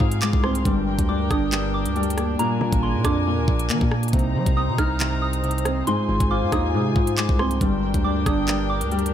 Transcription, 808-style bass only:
0.00 G#2
0.33 C2
0.65 G1
0.87 G#1
0.99 D2
1.31 G1
1.86 D2
2.61 A#2
2.73 G#1
2.94 A#2
3.05 F2
3.38 D2
3.48 A#1
3.70 F3
3.81 A#2
4.13 C2
4.35 G3
4.46 C2
4.68 C3
4.78 C2
6.09 G#1
6.20 G#1
6.42 G#2
6.52 D#2
6.74 C3
6.96 G#2
7.29 C2
7.61 G1
7.83 G#1
7.94 D2
8.26 G1
8.81 D2

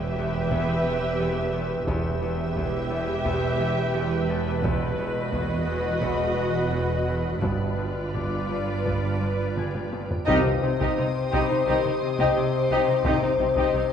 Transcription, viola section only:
Already playing: G4
1.86 G4
4.64 F#4
7.43 F4
10.27 D#4
10.46 D#4
10.63 D#4
10.80 D#4
10.97 D#4
11.32 D#4
11.49 D#4
11.67 D#4
11.84 D#4
12.20 D#4
12.72 D#4
12.90 D#4
13.05 D#4
13.23 D#4
13.39 D#4
13.56 D#4
13.72 D#4

